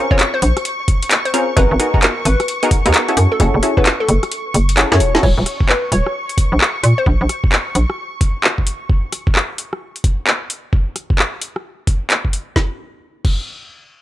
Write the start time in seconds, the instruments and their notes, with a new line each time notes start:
Already playing: string machine C#6
0.11 synth stab C4 C#4 F4 G#4 A#4, synth pluck C#5, kick
0.19 clap, closed hi-hat
0.34 synth pluck C5
0.42 fm bass A#1, open hi-hat
0.57 cross-stick, closed hi-hat
0.65 closed hi-hat
0.88 kick, open hi-hat
1.03 closed hi-hat
1.11 clap, closed hi-hat
1.25 synth pluck C5, closed hi-hat
1.34 synth stab C4 C#4 F4 G#4 A#4, open hi-hat
1.57 fm bass G#1, synth stab B3 D#4 F#4 G#4 A#4, synth pluck B4, kick, closed hi-hat
1.71 fm bass G#1
1.80 synth stab B3 D#4 F#4 G#4 A#4, cross-stick, open hi-hat
1.94 synth stab B3 D#4 F#4 G#4 A#4, kick
2.02 synth pluck A#4, clap, closed hi-hat
2.25 fm bass G#1, synth pluck B4, open hi-hat
2.40 cross-stick, closed hi-hat
2.48 closed hi-hat
2.63 synth stab B3 D#4 F#4 G#4 A#4, open hi-hat
2.71 kick, open hi-hat
2.86 fm bass D#2, synth stab B3 D#4 F#4 G#4 A#4, closed hi-hat
2.94 clap, closed hi-hat
3.08 synth stab C#4 E4 F#4 G#4 A4, closed hi-hat
3.17 fm bass F#2, open hi-hat
3.32 synth pluck A4
3.40 fm bass F#1, synth stab C#4 E4 F#4 G#4 A4, kick, closed hi-hat
3.54 fm bass F#1
3.63 synth stab C#4 E4 F#4 G#4 A4, cross-stick, open hi-hat
3.77 synth stab C#4 E4 F#4 G#4 A4, synth pluck B4, kick
3.86 clap, closed hi-hat
4.00 synth pluck A4
4.09 fm bass F#1, open hi-hat
4.23 cross-stick, closed hi-hat
4.32 closed hi-hat
4.54 fm bass F#1, open hi-hat
4.69 closed hi-hat
4.77 synth stab C#4 E4 F#4 G#4 A4, clap, open hi-hat
4.92 fm bass F#2, synth stab C#4 E4 F#4 G#4 A4, synth pluck C#5, snare, closed hi-hat
5.00 fm bass E1, open hi-hat
5.15 synth stab C#4 E4 F#4 G#4 A4, snare
5.23 fm bass D#1, synth pluck C#5, string machine C#6, kick, crash
5.38 fm bass D#1
5.46 cross-stick, open hi-hat
5.61 kick
5.69 synth pluck B4, clap
5.92 fm bass D#1, synth pluck C#5, open hi-hat
6.06 cross-stick
6.29 open hi-hat
6.38 kick, open hi-hat
6.52 fm bass A#1
6.61 clap
6.83 fm bass A#2, open hi-hat
6.98 synth pluck C5
7.06 fm bass A#1, kick
7.21 fm bass A#1
7.29 cross-stick, open hi-hat
7.44 kick
7.52 clap
7.75 fm bass A#1, open hi-hat
7.90 cross-stick
8.21 kick, open hi-hat
8.44 clap
8.58 kick
8.67 open hi-hat
8.90 kick
9.12 cross-stick, open hi-hat
9.27 kick
9.35 clap
9.58 open hi-hat
9.73 cross-stick
9.96 open hi-hat
10.04 kick, open hi-hat
10.27 clap
10.50 open hi-hat
10.73 kick
10.96 cross-stick, open hi-hat
11.10 kick
11.19 clap
11.42 open hi-hat
11.56 cross-stick
11.87 kick, open hi-hat
12.10 clap, open hi-hat
12.25 kick
12.33 open hi-hat
12.56 kick, snare
13.25 kick, crash